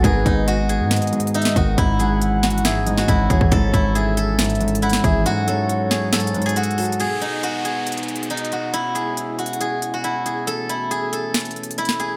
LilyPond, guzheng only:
\new Staff \with { instrumentName = "Guzheng" } { \time 4/4 \key gis \phrygian \tempo 4 = 138 gis'8 dis'8 fis'8 gis'4. dis'8 fis'8 | e'8 gis'4 fis'8 gis'8. fis'16 e'8 gis'8 | a'8 e'8 gis'8 a'4. e'8 gis'8 | fis'8 a'4 gis'8 a'8. gis'16 fis'8 a'8 |
gis'8 dis'8 fis'8 gis'4. dis'8 fis'8 | e'8 gis'4 fis'8 gis'8. fis'16 e'8 gis'8 | a'8 e'8 gis'8 a'4. e'8 gis'8 | }